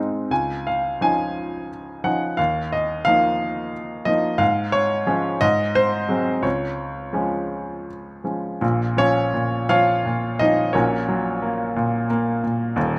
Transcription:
grand piano
Already playing: G#2 G#3 C4 D#4 C6
0.31 C#2 G#5
0.67 F5
1.01 F3 C#4 D#4 G#5
2.04 F3 C#4 D#4 F#5
2.37 D#2 F5
2.72 D#5
3.05 F3 A#3 D#4 F5
4.05 F3 A#3 D#4 D#5
4.38 G#2 F5
4.72 C#5
5.07 F3 G#3 C#4
5.41 G#2 D#5
5.75 C5
6.09 F#3 G#3 C4
6.42 C#2 C#5
7.13 F3 G#3 C#4
8.24 F3 G#3 C#4
8.61 A#1 A#2
8.97 F3 C#4 F4 C#5
9.34 A#2
9.69 F3 F4 C#5 F5
10.06 A#2
10.39 F3 D#4 D#5
10.73 A#1 A#2 C#4 F#4 A#4 C#5
11.09 F#3
11.42 A#3
11.76 A#2
12.10 A#3
12.44 A#2
12.76 D#1 D#2

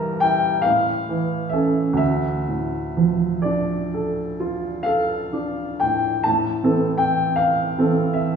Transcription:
grand piano
Already playing: G2 E3 G3 E4 A#4 G5 A5 A#5
0.20 E4 G5
0.62 A2 F5
1.09 E3
1.49 C#4 A4 E5
1.93 D2 E5
2.48 A2
2.97 F3
3.42 D4 D5
3.94 A4
4.40 F4
4.83 A4 F5
5.33 D4
5.80 A2 G5
6.24 A2 A5
6.64 E3 C4 A4
6.98 G5
7.36 F5
7.79 E3 C4 A4
8.14 E5

